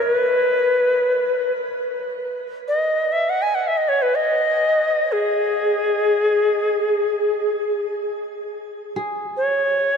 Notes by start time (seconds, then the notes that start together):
Already playing: D#5
0.03 B4
2.68 D#5
3.12 E5
3.30 F#5
3.42 G#5
3.55 F#5
3.67 E5
3.77 D#5
3.89 C#5
4.02 B4
4.15 D#5
5.12 G#4
8.96 G#4
9.37 C#5